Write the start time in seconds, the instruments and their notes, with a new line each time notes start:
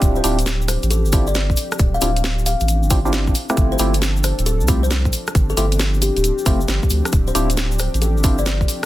Already playing: synth stab C4 D4 E4 F4 G4
0.02 sub bass D1, analog synth pad F3 C4 D4 G4, kick, closed hi-hat, shaker
0.16 kalimba C5, shaker
0.24 sub bass D1, synth stab C4 D4 E4 F4 G4, open hi-hat, shaker
0.39 closed hi-hat, shaker
0.46 snare, closed hi-hat, shaker
0.61 shaker
0.68 kalimba C5, cross-stick, open hi-hat, shaker
0.83 sub bass A1, closed hi-hat, shaker
0.91 kalimba A4, closed hi-hat, shaker
1.05 sub bass G1, shaker
1.12 synth stab C4 D4 E4 F4 G4, kick, open hi-hat, shaker
1.27 kalimba D5, shaker
1.35 kalimba D5, snare, closed hi-hat, shaker
1.50 kick, shaker
1.56 open hi-hat, shaker
1.72 cross-stick, closed hi-hat, shaker
1.79 sub bass D1, kick, closed hi-hat, shaker
1.94 kalimba F5, shaker
2.01 sub bass D1, synth stab C4 D4 E4 F4 G4, kalimba F5, open hi-hat, shaker
2.16 closed hi-hat, shaker
2.24 snare, closed hi-hat, shaker
2.39 shaker
2.46 kalimba F5, open hi-hat, shaker
2.60 sub bass A1, closed hi-hat, shaker
2.68 closed hi-hat, shaker
2.83 sub bass G1, shaker
2.90 synth stab C4 D4 E4 F4 G4, kick, open hi-hat, shaker
3.05 synth stab C4 D4 E4 F4 G4, shaker
3.13 snare, closed hi-hat, shaker
3.27 kick, shaker
3.35 analog synth pad A4, open hi-hat, shaker
3.49 synth stab A3 C4 E4 F4 G4, cross-stick, closed hi-hat, shaker
3.57 sub bass G1, kick, closed hi-hat, shaker
3.72 kalimba C5, shaker
3.79 sub bass G1, synth stab A3 C4 E4 F4 G4, open hi-hat, shaker
3.94 closed hi-hat, shaker
4.02 snare, closed hi-hat, shaker
4.16 shaker
4.24 kalimba C5, cross-stick, open hi-hat, shaker
4.39 sub bass D1, closed hi-hat, shaker
4.46 kalimba A4, closed hi-hat, shaker
4.61 sub bass C2, shaker
4.68 synth stab A3 C4 E4 F4 G4, kick, open hi-hat, shaker
4.83 kalimba C5, shaker
4.91 snare, closed hi-hat, shaker
5.05 kick, shaker
5.12 analog synth pad G4, open hi-hat, shaker
5.27 cross-stick, closed hi-hat, shaker
5.35 sub bass G1, kick, closed hi-hat, shaker
5.50 kalimba A4, shaker
5.57 sub bass G1, synth stab A3 C4 E4 F4 G4, kalimba A4, open hi-hat, shaker
5.72 closed hi-hat, shaker
5.79 snare, closed hi-hat, shaker
5.94 shaker
6.02 kalimba G4, open hi-hat, shaker
6.16 sub bass D1, kalimba G4, closed hi-hat, shaker
6.24 closed hi-hat, shaker
6.38 shaker
6.46 sub bass F1, synth stab A3 C4 E4 F4 G4, kick, open hi-hat, shaker
6.60 shaker
6.68 sub bass G1, snare, closed hi-hat, shaker
6.83 kick, shaker
6.90 sub bass D2, open hi-hat, shaker
7.05 cross-stick, closed hi-hat, shaker
7.12 sub bass D1, kick, closed hi-hat, shaker
7.27 kalimba C5, shaker
7.35 sub bass D1, synth stab C4 D4 E4 F4 G4, open hi-hat, shaker
7.50 closed hi-hat, shaker
7.57 snare, closed hi-hat, shaker
7.71 shaker
7.79 kalimba C5, cross-stick, open hi-hat, shaker
7.94 sub bass A1, closed hi-hat, shaker
8.02 kalimba A4, closed hi-hat, shaker
8.16 sub bass G1, shaker
8.24 synth stab C4 D4 E4 F4 G4, kick, open hi-hat, shaker
8.38 kalimba D5, shaker
8.46 kalimba D5, snare, closed hi-hat, shaker
8.61 kick, shaker
8.68 open hi-hat, shaker